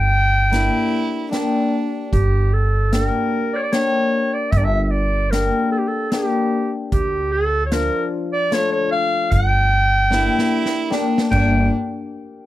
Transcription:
Already playing: G1 G5
0.51 A#3 D4 E4 G4, snare, closed hi-hat
1.31 A#3 D4 G4, snare, closed hi-hat
2.13 G1 G4, kick, closed hi-hat
2.54 A4
2.92 A#3 D4 G4 A#4, snare, closed hi-hat
3.53 C#5 D5
3.62 D5
3.72 A#3 D4 G4 C#5, snare, closed hi-hat
4.33 D5
4.51 G1 E5, kick, closed hi-hat
4.58 D5
4.65 E5
4.84 E5
4.91 D5
5.31 A#3 D4 G4 A#4, snare, closed hi-hat
5.71 A4
5.79 G4
5.88 A4
6.12 A#3 D4 G4, snare, closed hi-hat
6.92 D2 G4, kick, closed hi-hat
7.32 A4
7.66 C#5
7.71 F3 D4 F4 A#4, snare, closed hi-hat
8.33 D5
8.51 A3 D4 F4 C#5, snare, closed hi-hat
8.72 C#5
8.92 F5
9.31 G1 G5, kick, closed hi-hat
10.10 A#3 D4 E4 G4, snare
10.39 snare
10.66 snare
10.90 A#3 D4 G4, snare
11.18 snare
11.31 G1 A#3 D4 G4 G5, kick, crash

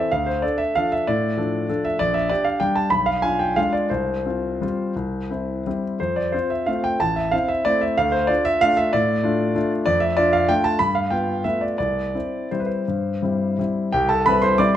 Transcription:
Already playing: E5
0.11 D2 F5
0.26 C5
0.42 D4 A4 D5
0.58 E5
0.75 F3 D4 A4 F5
0.92 E5
1.07 A2 D5
1.37 F3 D4 A4
1.69 F3 D4 A4
1.85 E5
1.99 A#1 D5
2.14 E5
2.29 D4 G4 D5
2.44 F5
2.60 G3 D4 G4 G5
2.75 A5
2.90 B1 B5
3.06 F5
3.22 D4 F4 G#5
3.39 G5
3.56 G#3 D4 F4 F5
3.73 D5
3.90 C2 C5
4.26 C4 F4
4.61 G3 C4 F4
4.96 C2
5.30 C4 E4
5.67 G3 C4 E4
6.00 F2 C5
6.16 D5
6.32 C4 F4 C5
6.50 E5
6.66 A3 C4 F4 F5
6.84 G5
7.00 A1 A5
7.16 E5
7.31 C4 E4 F5
7.48 E5
7.65 A3 C4 E4 D5
7.81 E5
7.97 D2 F5
8.12 C5
8.27 D4 F4 D5
8.45 E5
8.61 A3 D4 F4 F5
8.77 E5
8.93 A2 D5
9.23 A3 D4 F4
9.55 A3 D4 F4
9.86 F2 D5
10.00 E5
10.17 D4 F4 D5
10.33 F5
10.49 A3 D4 F4 G5
10.64 A5
10.79 G2 B5
10.95 F5
11.10 B3 F4 G5
11.44 A3 B3 F4 E5
11.61 D5
11.78 C2 D5
12.15 C4 E4
12.51 G3 C4 E4 C5
12.60 B4
12.66 C5
12.88 G2
13.22 G3 C4 E4
13.59 G3 C4 E4
13.92 C2 G4 G5
14.09 A4 A5
14.26 G3 C4 E4 B4 B5
14.42 C5 C6
14.58 G3 C4 E4 D5 D6

